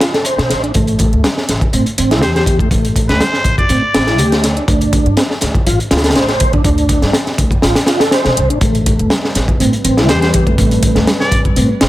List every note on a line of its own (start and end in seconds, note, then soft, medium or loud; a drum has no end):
0.01 0.13 F4 medium
0.01 snare loud
0.01 closed hi-hat medium
0.14 0.25 A4 medium
0.14 snare medium
0.14 closed hi-hat soft
0.25 0.62 C5 medium
0.25 closed hi-hat medium
0.25 closed hi-hat soft
0.38 0.48 B2 medium
0.38 snare soft
0.38 closed hi-hat soft
0.50 0.71 A1 medium
0.50 snare soft
0.50 closed hi-hat medium
0.63 0.72 D4 medium
0.63 closed hi-hat soft
0.74 1.09 A1 medium
0.74 1.23 A3 medium
0.74 kick loud
0.74 closed hi-hat medium
0.74 closed hi-hat soft
0.87 closed hi-hat soft
0.99 kick medium
0.99 closed hi-hat medium
1.13 1.22 D2 medium
1.13 closed hi-hat soft
1.24 1.30 G3 medium
1.24 snare loud
1.24 closed hi-hat medium
1.24 closed hi-hat soft
1.37 snare soft
1.49 1.60 A1 medium
1.49 snare soft
1.49 closed hi-hat medium
1.61 kick medium
1.61 closed hi-hat soft
1.73 1.84 A2 medium
1.73 1.86 C4 medium
1.73 closed hi-hat medium
1.73 closed hi-hat soft
1.86 closed hi-hat soft
1.98 2.22 A1 medium
1.98 2.10 C4 medium
1.98 closed hi-hat medium
2.11 2.22 E4 loud
2.11 snare medium
2.11 closed hi-hat soft
2.22 2.57 E2 loud
2.22 2.59 G4 medium
2.22 2.31 C5 medium
2.22 snare loud
2.22 closed hi-hat soft
2.22 closed hi-hat medium
2.36 2.43 C5 medium
2.36 snare soft
2.36 closed hi-hat soft
2.46 kick loud
2.46 closed hi-hat medium
2.59 2.69 A3 medium
2.59 kick medium
2.59 closed hi-hat soft
2.71 3.05 A1 medium
2.71 3.20 A3 medium
2.71 kick loud
2.71 closed hi-hat medium
2.71 closed hi-hat soft
2.85 closed hi-hat soft
2.96 kick medium
2.96 closed hi-hat medium
3.09 3.19 D2 medium
3.09 3.56 C5 medium
3.09 snare soft
3.09 closed hi-hat soft
3.21 3.27 G3 medium
3.21 snare loud
3.21 closed hi-hat soft
3.21 closed hi-hat medium
3.33 snare soft
3.44 3.56 A1 medium
3.44 kick medium
3.44 closed hi-hat medium
3.58 4.27 D5 medium
3.58 kick medium
3.58 closed hi-hat soft
3.69 3.81 A2 medium
3.69 3.82 C4 medium
3.69 closed hi-hat medium
3.69 closed hi-hat soft
3.94 4.19 A1 medium
3.94 4.07 C4 medium
3.94 snare loud
3.94 closed hi-hat medium
4.07 4.19 E4 loud
4.07 snare medium
4.07 closed hi-hat soft
4.18 4.53 D2 loud
4.18 4.44 G4 medium
4.18 closed hi-hat medium
4.18 closed hi-hat soft
4.32 snare soft
4.32 closed hi-hat soft
4.44 snare soft
4.44 closed hi-hat medium
4.57 4.65 D4 medium
4.57 closed hi-hat soft
4.68 5.02 D2 medium
4.68 5.16 D4 medium
4.68 kick loud
4.68 closed hi-hat medium
4.68 closed hi-hat soft
4.81 closed hi-hat soft
4.93 kick medium
4.93 closed hi-hat medium
5.06 5.15 G2 medium
5.06 closed hi-hat soft
5.17 5.23 C4 medium
5.17 snare loud
5.17 closed hi-hat medium
5.17 closed hi-hat soft
5.31 snare soft
5.41 5.53 D2 medium
5.41 snare soft
5.41 closed hi-hat medium
5.55 kick medium
5.55 closed hi-hat soft
5.67 5.77 A1 medium
5.67 5.79 F4 medium
5.67 closed hi-hat medium
5.67 closed hi-hat soft
5.80 closed hi-hat soft
5.91 6.16 D2 medium
5.91 6.04 F4 medium
5.91 snare medium
5.91 closed hi-hat medium
5.97 snare medium
5.97 closed hi-hat medium
6.04 6.15 A4 loud
6.04 snare medium
6.04 closed hi-hat medium
6.04 closed hi-hat soft
6.10 snare medium
6.10 closed hi-hat medium
6.15 6.50 A1 loud
6.15 6.52 C5 medium
6.15 snare loud
6.15 closed hi-hat medium
6.15 closed hi-hat soft
6.29 snare medium
6.29 closed hi-hat soft
6.40 kick medium
6.40 closed hi-hat medium
6.53 6.62 D4 medium
6.53 kick loud
6.53 closed hi-hat soft
6.64 6.99 D2 medium
6.64 7.13 D4 medium
6.64 kick medium
6.64 closed hi-hat medium
6.64 closed hi-hat soft
6.78 closed hi-hat soft
6.89 kick medium
6.89 closed hi-hat medium
7.02 7.12 G2 medium
7.02 snare soft
7.02 closed hi-hat soft
7.13 7.20 C4 medium
7.13 snare loud
7.13 closed hi-hat soft
7.13 closed hi-hat medium
7.27 snare soft
7.27 closed hi-hat soft
7.38 7.49 D2 medium
7.38 kick medium
7.38 closed hi-hat medium
7.51 kick medium
7.51 closed hi-hat soft
7.62 7.74 A1 medium
7.62 7.76 F4 medium
7.62 snare medium
7.62 closed hi-hat medium
7.62 closed hi-hat soft
7.75 snare loud
7.75 closed hi-hat medium
7.75 closed hi-hat soft
7.86 8.00 F4 medium
7.86 snare loud
7.86 closed hi-hat medium
8.00 8.12 A4 loud
8.00 snare medium
8.00 closed hi-hat medium
8.00 closed hi-hat soft
8.11 8.49 C5 medium
8.11 snare medium
8.11 closed hi-hat medium
8.11 closed hi-hat soft
8.25 8.35 B2 medium
8.25 snare soft
8.25 closed hi-hat soft
8.37 8.50 C2 medium
8.37 closed hi-hat medium
8.50 8.60 A1 medium
8.50 8.59 D4 medium
8.50 closed hi-hat soft
8.61 8.96 A1 medium
8.61 11.89 G3 medium
8.61 9.10 A3 medium
8.61 11.89 C4 medium
8.61 11.89 B4 medium
8.61 kick loud
8.61 closed hi-hat medium
8.61 closed hi-hat soft
8.75 closed hi-hat soft
8.86 kick medium
8.86 closed hi-hat medium
8.99 9.09 D2 medium
8.99 closed hi-hat soft
9.10 9.17 G3 medium
9.10 snare loud
9.10 closed hi-hat soft
9.10 closed hi-hat medium
9.25 snare soft
9.35 9.46 A1 medium
9.35 snare soft
9.35 closed hi-hat medium
9.48 kick medium
9.48 closed hi-hat soft
9.60 9.71 A2 medium
9.60 9.73 C4 medium
9.60 closed hi-hat soft
9.60 closed hi-hat medium
9.73 closed hi-hat soft
9.84 10.09 A1 medium
9.84 9.97 C4 medium
9.84 closed hi-hat medium
9.97 10.09 E4 loud
9.97 snare medium
9.97 closed hi-hat soft
10.09 10.43 E2 loud
10.09 10.46 G4 medium
10.09 10.18 C5 medium
10.09 snare loud
10.09 closed hi-hat medium
10.09 closed hi-hat soft
10.22 10.29 C5 medium
10.22 snare medium
10.22 closed hi-hat soft
10.34 kick medium
10.34 closed hi-hat medium
10.47 10.56 A3 medium
10.47 kick medium
10.47 closed hi-hat soft
10.58 10.92 A1 medium
10.58 11.06 A3 medium
10.58 kick loud
10.58 closed hi-hat soft
10.58 closed hi-hat medium
10.71 closed hi-hat soft
10.83 kick medium
10.83 closed hi-hat medium
10.95 11.06 D2 medium
10.95 snare soft
10.95 closed hi-hat soft
11.07 11.13 G3 medium
11.07 snare loud
11.07 closed hi-hat soft
11.07 closed hi-hat medium
11.20 11.40 D5 medium
11.20 snare soft
11.31 11.43 A1 medium
11.31 kick medium
11.31 closed hi-hat medium
11.45 kick medium
11.45 closed hi-hat soft
11.56 11.68 A2 medium
11.56 11.69 C4 medium
11.56 closed hi-hat soft
11.56 closed hi-hat medium
11.81 11.89 A1 medium
11.81 11.89 C4 medium
11.81 snare loud
11.81 closed hi-hat medium